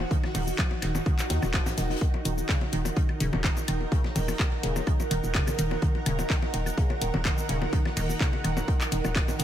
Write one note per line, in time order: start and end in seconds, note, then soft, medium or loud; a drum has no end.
0.00 9.44 D#4 medium
0.00 2.09 F#4 loud
0.11 0.17 D#3 medium
0.11 kick loud
0.11 closed hi-hat medium
0.24 snare medium
0.24 low bongo medium
0.24 high woodblock medium
0.35 0.52 D#1 medium
0.35 0.43 D#3 medium
0.35 closed hi-hat medium
0.35 open hi-hat medium
0.35 low conga medium
0.35 shaker soft
0.47 low bongo soft
0.47 shaker soft
0.58 0.62 F3 medium
0.58 kick loud
0.58 snare loud
0.58 clap medium
0.58 closed hi-hat medium
0.71 low bongo medium
0.82 1.00 D#1 medium
0.82 0.88 D#3 medium
0.82 snare loud
0.82 closed hi-hat medium
0.82 high woodblock medium
0.95 snare soft
0.95 low bongo medium
0.95 low conga medium
0.95 shaker soft
1.06 1.15 D#3 medium
1.06 kick loud
1.06 closed hi-hat medium
1.18 clap medium
1.18 closed hi-hat soft
1.18 low bongo soft
1.18 shaker soft
1.30 1.39 D#2 loud
1.30 1.36 D#3 loud
1.30 snare loud
1.30 closed hi-hat medium
1.30 shaker soft
1.42 1.59 D#1 medium
1.42 snare soft
1.42 low bongo medium
1.42 high woodblock medium
1.42 shaker soft
1.54 1.57 F3 medium
1.54 kick loud
1.54 snare medium
1.54 clap medium
1.54 closed hi-hat medium
1.66 snare loud
1.66 closed hi-hat medium
1.66 low bongo medium
1.66 low conga loud
1.66 shaker medium
1.77 1.95 D#1 loud
1.77 1.86 D#3 medium
1.77 snare loud
1.77 closed hi-hat medium
1.77 shaker medium
1.90 snare loud
1.90 closed hi-hat medium
1.90 low bongo soft
1.96 snare loud
1.96 closed hi-hat medium
2.01 2.07 D#3 medium
2.01 9.44 F#5 medium
2.01 kick loud
2.01 closed hi-hat medium
2.06 9.44 A#4 loud
2.14 low bongo medium
2.25 2.43 D#1 loud
2.25 2.34 D#3 medium
2.25 closed hi-hat medium
2.25 shaker soft
2.38 low bongo soft
2.38 shaker soft
2.49 2.55 C#3 loud
2.49 kick loud
2.49 snare loud
2.49 clap medium
2.49 closed hi-hat medium
2.49 high woodblock medium
2.61 snare soft
2.61 low bongo medium
2.72 2.91 D#1 medium
2.72 2.79 D#3 medium
2.72 closed hi-hat medium
2.85 closed hi-hat soft
2.85 low bongo medium
2.85 shaker soft
2.96 3.05 D#3 medium
2.96 kick loud
2.96 closed hi-hat medium
3.09 low bongo soft
3.09 high woodblock medium
3.20 3.30 D#1 medium
3.20 3.26 C#3 loud
3.20 closed hi-hat medium
3.20 shaker soft
3.33 3.50 D#1 medium
3.33 low bongo medium
3.33 low conga loud
3.44 3.50 D#3 medium
3.44 kick loud
3.44 snare loud
3.44 clap loud
3.44 closed hi-hat medium
3.57 low bongo medium
3.57 shaker medium
3.68 3.86 D#1 medium
3.68 3.77 D#3 medium
3.68 closed hi-hat medium
3.68 high woodblock medium
3.81 low bongo soft
3.92 3.98 C#3 loud
3.92 kick loud
3.92 closed hi-hat medium
4.04 snare medium
4.04 low bongo medium
4.16 4.33 D#1 loud
4.16 4.21 D#3 medium
4.16 closed hi-hat medium
4.16 open hi-hat medium
4.16 low conga medium
4.16 shaker soft
4.28 low bongo medium
4.28 high woodblock medium
4.28 shaker soft
4.39 4.48 D#3 medium
4.39 kick loud
4.39 snare loud
4.39 clap loud
4.39 closed hi-hat medium
4.52 low bongo soft
4.63 4.81 D#1 medium
4.63 4.69 C#3 loud
4.63 closed hi-hat medium
4.63 closed hi-hat loud
4.76 low bongo medium
4.76 shaker soft
4.87 4.93 D#3 medium
4.87 kick loud
4.87 closed hi-hat medium
4.87 high woodblock medium
5.00 low bongo medium
5.00 shaker soft
5.11 5.20 D#1 loud
5.11 5.20 D#3 medium
5.11 closed hi-hat medium
5.11 closed hi-hat loud
5.11 shaker soft
5.24 5.40 D#1 medium
5.24 low bongo soft
5.24 shaker soft
5.34 5.40 C#3 loud
5.34 kick loud
5.34 snare loud
5.34 clap medium
5.34 closed hi-hat medium
5.47 closed hi-hat soft
5.47 low bongo medium
5.47 low conga loud
5.47 high woodblock medium
5.47 shaker soft
5.58 5.76 D#1 medium
5.58 5.64 D#3 medium
5.58 closed hi-hat loud
5.58 closed hi-hat medium
5.58 shaker medium
5.71 low bongo medium
5.82 5.91 D#3 medium
5.82 kick loud
5.82 closed hi-hat loud
5.95 low bongo soft
6.06 6.24 D#1 loud
6.06 6.12 C#3 loud
6.06 closed hi-hat medium
6.06 high woodblock medium
6.06 shaker soft
6.19 low bongo medium
6.19 shaker soft
6.30 6.36 D#3 medium
6.30 kick loud
6.30 snare loud
6.30 clap medium
6.30 closed hi-hat medium
6.42 snare soft
6.42 low bongo medium
6.54 6.71 D#1 medium
6.54 6.62 D#3 medium
6.54 closed hi-hat medium
6.54 closed hi-hat loud
6.66 closed hi-hat soft
6.66 low bongo soft
6.66 high woodblock medium
6.66 shaker soft
6.78 6.83 C#3 loud
6.78 kick loud
6.78 closed hi-hat medium
6.90 low bongo medium
7.01 7.11 D#1 loud
7.01 7.07 D#3 medium
7.01 closed hi-hat medium
7.01 closed hi-hat loud
7.01 shaker soft
7.14 7.31 D#1 medium
7.14 low bongo medium
7.14 low conga loud
7.24 7.34 D#3 medium
7.24 kick loud
7.24 snare loud
7.24 clap loud
7.24 closed hi-hat medium
7.24 high woodblock medium
7.38 low bongo soft
7.38 shaker soft
7.49 7.67 D#1 loud
7.49 7.55 C#3 loud
7.49 closed hi-hat medium
7.49 closed hi-hat loud
7.62 low bongo medium
7.73 7.79 D#3 medium
7.73 kick loud
7.73 closed hi-hat loud
7.85 snare medium
7.85 low bongo medium
7.85 high woodblock medium
7.96 8.14 D#1 loud
7.96 8.05 D#3 medium
7.96 closed hi-hat medium
7.96 open hi-hat medium
7.96 low conga medium
7.96 shaker soft
8.09 low bongo soft
8.09 shaker soft
8.20 8.26 C#3 loud
8.20 kick loud
8.20 snare loud
8.20 clap medium
8.20 closed hi-hat medium
8.33 low bongo medium
8.44 8.62 D#1 medium
8.44 8.50 D#3 medium
8.44 closed hi-hat medium
8.44 high woodblock medium
8.57 low bongo medium
8.57 low conga medium
8.57 shaker soft
8.68 8.77 D#3 medium
8.68 kick loud
8.68 closed hi-hat medium
8.81 clap medium
8.81 low bongo soft
8.81 shaker soft
8.92 9.01 D#1 loud
8.92 8.95 D#3 medium
8.92 closed hi-hat medium
8.92 closed hi-hat loud
8.92 shaker soft
9.05 9.21 D#1 medium
9.05 low bongo medium
9.05 high woodblock medium
9.05 shaker soft
9.16 9.21 D#3 medium
9.16 kick loud
9.16 snare loud
9.16 clap medium
9.16 closed hi-hat medium
9.28 9.36 D#3 medium
9.28 closed hi-hat soft
9.28 low bongo medium
9.28 low conga medium
9.28 shaker soft
9.39 9.44 D#1 loud
9.39 9.44 D#3 loud
9.39 closed hi-hat medium
9.39 closed hi-hat loud
9.39 shaker soft